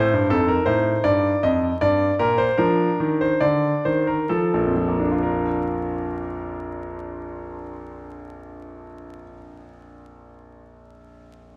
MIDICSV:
0, 0, Header, 1, 2, 480
1, 0, Start_track
1, 0, Key_signature, -2, "major"
1, 0, Tempo, 744417
1, 199, Time_signature, 3, 2, 24, 8
1, 1164, Tempo, 781250
1, 1644, Tempo, 834492
1, 2124, Tempo, 869565
1, 2604, Tempo, 914634
1, 6424, End_track
2, 0, Start_track
2, 0, Title_t, "Grand piano"
2, 0, Program_c, 0, 0
2, 0, Note_on_c, 0, 45, 69
2, 0, Note_on_c, 0, 72, 84
2, 79, Note_off_c, 0, 45, 0
2, 87, Note_on_c, 0, 43, 63
2, 167, Note_off_c, 0, 72, 0
2, 192, Note_on_c, 0, 41, 63
2, 196, Note_off_c, 0, 43, 0
2, 196, Note_on_c, 0, 69, 81
2, 198, Note_on_c, 0, 63, 41
2, 311, Note_on_c, 0, 70, 74
2, 315, Note_off_c, 0, 69, 0
2, 365, Note_off_c, 0, 41, 0
2, 423, Note_on_c, 0, 72, 76
2, 429, Note_on_c, 0, 45, 60
2, 433, Note_off_c, 0, 70, 0
2, 604, Note_off_c, 0, 45, 0
2, 669, Note_off_c, 0, 72, 0
2, 669, Note_on_c, 0, 74, 81
2, 671, Note_on_c, 0, 43, 61
2, 848, Note_off_c, 0, 43, 0
2, 916, Note_off_c, 0, 74, 0
2, 923, Note_on_c, 0, 75, 85
2, 925, Note_on_c, 0, 41, 63
2, 1099, Note_off_c, 0, 41, 0
2, 1129, Note_off_c, 0, 75, 0
2, 1137, Note_off_c, 0, 63, 0
2, 1168, Note_on_c, 0, 74, 81
2, 1171, Note_on_c, 0, 43, 60
2, 1338, Note_off_c, 0, 43, 0
2, 1367, Note_off_c, 0, 74, 0
2, 1403, Note_on_c, 0, 46, 66
2, 1403, Note_on_c, 0, 70, 82
2, 1516, Note_on_c, 0, 72, 75
2, 1522, Note_off_c, 0, 70, 0
2, 1577, Note_off_c, 0, 46, 0
2, 1637, Note_on_c, 0, 70, 79
2, 1639, Note_on_c, 0, 62, 41
2, 1641, Note_off_c, 0, 72, 0
2, 1643, Note_on_c, 0, 53, 59
2, 1813, Note_off_c, 0, 53, 0
2, 1882, Note_on_c, 0, 51, 57
2, 1944, Note_off_c, 0, 70, 0
2, 2002, Note_on_c, 0, 72, 70
2, 2056, Note_off_c, 0, 51, 0
2, 2115, Note_on_c, 0, 74, 79
2, 2118, Note_on_c, 0, 50, 56
2, 2124, Note_off_c, 0, 72, 0
2, 2290, Note_off_c, 0, 50, 0
2, 2356, Note_off_c, 0, 74, 0
2, 2362, Note_on_c, 0, 72, 67
2, 2365, Note_on_c, 0, 51, 53
2, 2481, Note_off_c, 0, 72, 0
2, 2483, Note_on_c, 0, 70, 65
2, 2538, Note_off_c, 0, 51, 0
2, 2579, Note_off_c, 0, 62, 0
2, 2604, Note_off_c, 0, 70, 0
2, 2605, Note_on_c, 0, 69, 64
2, 2608, Note_on_c, 0, 53, 53
2, 2733, Note_on_c, 0, 34, 55
2, 2795, Note_on_c, 0, 41, 43
2, 2844, Note_off_c, 0, 53, 0
2, 2852, Note_on_c, 0, 53, 42
2, 2914, Note_on_c, 0, 58, 43
2, 2974, Note_on_c, 0, 62, 44
2, 3022, Note_off_c, 0, 69, 0
2, 3037, Note_on_c, 0, 65, 45
2, 3096, Note_on_c, 0, 70, 52
2, 3203, Control_c, 0, 64, 127
2, 5006, Note_off_c, 0, 34, 0
2, 5068, Note_off_c, 0, 41, 0
2, 5125, Note_off_c, 0, 53, 0
2, 5187, Note_off_c, 0, 58, 0
2, 5247, Note_off_c, 0, 62, 0
2, 5310, Note_off_c, 0, 65, 0
2, 5369, Note_off_c, 0, 70, 0
2, 6424, End_track
0, 0, End_of_file